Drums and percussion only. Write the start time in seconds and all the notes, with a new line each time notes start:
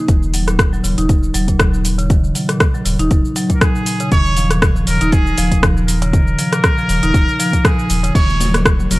0.08 kick, closed hi-hat, cabasa
0.23 cabasa
0.34 open hi-hat, cabasa
0.48 cross-stick, closed hi-hat, cabasa
0.59 kick, cross-stick, closed hi-hat, cabasa
0.73 cabasa
0.84 open hi-hat, cabasa
0.98 closed hi-hat, cabasa
1.09 kick, closed hi-hat, cabasa
1.23 cabasa
1.34 open hi-hat, cabasa
1.48 kick, closed hi-hat, cabasa
1.59 kick, cross-stick, closed hi-hat, cabasa
1.74 cabasa
1.85 open hi-hat, cabasa
1.99 closed hi-hat, cabasa
2.10 kick, closed hi-hat, cabasa
2.24 cabasa
2.35 open hi-hat, cabasa
2.49 cross-stick, closed hi-hat, cabasa
2.60 kick, cross-stick, closed hi-hat, cabasa
2.74 cabasa
2.85 open hi-hat, cabasa
2.99 closed hi-hat, cabasa
3.11 kick, closed hi-hat, cabasa
3.25 cabasa
3.36 open hi-hat, cabasa
3.50 kick, closed hi-hat, cabasa
3.61 kick, cross-stick, closed hi-hat, cabasa
3.75 cabasa
3.86 open hi-hat, cabasa
4.00 closed hi-hat, cabasa
4.12 kick, closed hi-hat, cabasa
4.26 cabasa
4.37 open hi-hat, cabasa
4.51 cross-stick, closed hi-hat, cabasa
4.62 kick, cross-stick, closed hi-hat, cabasa
4.76 cabasa
4.87 open hi-hat, cabasa
5.01 closed hi-hat, cabasa
5.12 kick, closed hi-hat, cabasa
5.27 cabasa
5.38 open hi-hat, cabasa
5.52 kick, closed hi-hat, cabasa
5.63 kick, cross-stick, closed hi-hat, cabasa
5.77 cabasa
5.88 open hi-hat, cabasa
6.02 closed hi-hat, cabasa
6.13 kick, closed hi-hat, cabasa
6.28 cabasa
6.39 open hi-hat, cabasa
6.53 cross-stick, closed hi-hat, cabasa
6.64 kick, cross-stick, closed hi-hat, cabasa
6.78 cabasa
6.89 open hi-hat, cabasa
7.03 closed hi-hat, cabasa
7.14 kick, closed hi-hat, cabasa
7.28 cabasa
7.40 open hi-hat, cabasa
7.53 kick, closed hi-hat, cabasa
7.65 kick, cross-stick, closed hi-hat, cabasa
7.79 cabasa
7.90 open hi-hat, cabasa
8.04 closed hi-hat, cabasa
8.15 kick, closed hi-hat, crash, cabasa
8.29 muted conga, cabasa
8.40 open hi-hat, high conga, low conga, cabasa
8.54 cross-stick, closed hi-hat, muted conga, high conga, cabasa
8.65 kick, cross-stick, closed hi-hat, cabasa
8.80 muted conga, cabasa
8.91 open hi-hat, high conga, low conga, cabasa